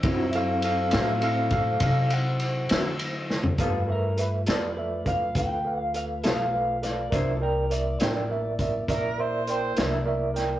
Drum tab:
RD |x-x-x-x-x-x-x-x-x-x-x---|------------------------|------------------------|
HH |------------------------|x---x-x---x-x---x-x---x-|x---x-x---x-x---x-x---x-|
SD |------o-----------o---o-|------o-----------o---o-|------o-----------o---o-|
FT |-----------------------o|------------------------|------------------------|
BD |o---------o-o-----------|o---------o-o-----------|o---------o-o-----------|